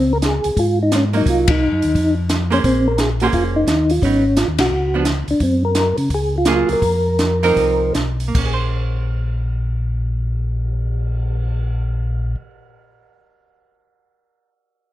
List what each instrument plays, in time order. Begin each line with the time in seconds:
Already playing: tonewheel organ C#2 C4
0.13 tonewheel organ A#4
0.22 tonewheel organ G#4, snare, closed hi-hat
0.44 tonewheel organ C#2, open hi-hat
0.56 tonewheel organ G#2 F4, kick, open hi-hat
0.83 tonewheel organ D#4
0.92 tonewheel organ C#4, snare, closed hi-hat
1.13 hollow-body jazz guitar F#3 A#3 D#4, tonewheel organ D#4, open hi-hat
1.26 tonewheel organ C2 F4, kick, open hi-hat
1.48 tonewheel organ D#4, kick, ride
1.72 tonewheel organ F#2
1.82 tonewheel organ D#2, open hi-hat
1.95 tonewheel organ F2, kick, open hi-hat
2.29 snare, closed hi-hat
2.50 hollow-body jazz guitar A#3 C#4 G#4 C5, tonewheel organ C#4, open hi-hat
2.64 tonewheel organ A#1 C4, kick, open hi-hat
2.88 tonewheel organ A#4
2.98 tonewheel organ G#4, snare, closed hi-hat
3.20 hollow-body jazz guitar A#3 C#4 G#4 C5, tonewheel organ F#4, open hi-hat
3.33 tonewheel organ F1 F4, kick, open hi-hat
3.56 tonewheel organ D#4
3.67 tonewheel organ D#2, snare, closed hi-hat
3.90 tonewheel organ F4, open hi-hat
4.02 tonewheel organ G#1 C#4, hollow-body jazz guitar F#3 B3 D#4, kick, open hi-hat
4.37 tonewheel organ F4, snare, closed hi-hat
4.48 tonewheel organ D#2
4.58 tonewheel organ B1 F#4, snare, ride
4.71 tonewheel organ C#2
4.94 hollow-body jazz guitar F3 B3 D4
5.05 snare, closed hi-hat
5.28 tonewheel organ C#2 D4, open hi-hat
5.40 tonewheel organ F#2 C4, kick, open hi-hat
5.65 tonewheel organ A#4
5.75 snare, closed hi-hat
5.98 tonewheel organ C#3, open hi-hat
6.10 tonewheel organ C#2, kick, open hi-hat
6.14 tonewheel organ G#4
6.38 tonewheel organ F4
6.45 hollow-body jazz guitar F#3 A#3 F4 G#4, snare, closed hi-hat
6.69 tonewheel organ C#2 A#4, open hi-hat
6.82 tonewheel organ F2, kick, open hi-hat
7.19 snare, closed hi-hat
7.43 hollow-body jazz guitar F3 C4 D#4 A#4, open hi-hat
7.56 tonewheel organ C2, kick, open hi-hat
7.94 tonewheel organ B1, snare, closed hi-hat
8.20 open hi-hat
8.28 hollow-body jazz guitar A#3
8.35 tonewheel organ A#1, hollow-body jazz guitar C#4, kick, crash
8.46 hollow-body jazz guitar G#4
8.54 hollow-body jazz guitar C5
8.61 cymbal swell